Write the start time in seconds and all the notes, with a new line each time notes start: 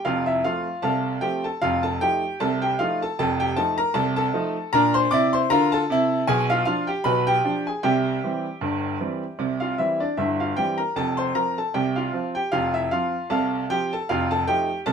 0.05 F1 F2 F4 F5
0.26 E4 E5
0.44 F3 A3 C4 F4 F5
0.82 C2 C3 A4 F5 A5
1.21 F3 A3 C4 G4 G5
1.44 A4 A5
1.62 F1 F2 F4 F5
1.83 A4 A5
2.01 F3 A3 D#4 G4 G5
2.40 C2 C3 A4 A5
2.62 G4 G5
2.79 F3 A3 D#4 F4 F5
3.02 A4 A5
3.19 F1 F2 A4 A5
3.40 G4 G5
3.56 F3 A3 D#4 A4 A5
3.78 A#4 A#5
3.94 C2 C3 A4 A5
4.16 A4 A5
4.34 F3 A3 D#4
4.73 A#2 D4 A#4 A#5
4.94 C5 C6
5.11 C3 E4 D5 D6
5.33 C5 C6
5.50 D3 F4 A#4 A#5
5.72 A4 A5
5.90 C3 E4
6.27 B1 B2 G#4 G#5
6.50 F4 F5
6.65 F3 D4 F4 F5
6.87 G4 G5
7.04 B1 B2 B4 B5
7.27 G4 G5
7.45 F3 D4
7.67 G#4 G#5
7.83 C2 C3 G4 E5 G5
8.24 E3 G3 C4
8.61 G1 G2
9.00 E3 G3 C4
9.39 C2 C3
9.60 F4 F5
9.78 E3 G3 C4 E4 E5
10.00 D4 D5
10.17 G1 G2 E4 E5
10.40 F4 F5
10.56 E3 G3 C4 G4 G5
10.78 A#4 A#5
10.96 F1 F2 A4 A5
11.17 C5 C6
11.35 F3 C4 A#4 A#5
11.58 A4 A5
11.74 C2 C3 G4 G5
11.96 F4 F5
12.13 F3 C4
12.35 G4 G5
12.52 F1 F2 F4 F5
12.74 E4 E5
12.91 F3 C4 F4 F5
13.30 C2 C3 A4 F5 A5
13.70 F3 C4 G4 G5
13.93 A4 A5
14.09 F1 F2 F4 F5
14.31 A4 A5
14.47 F3 A3 D#4 G4 G5
14.86 C2 C3 A4 A5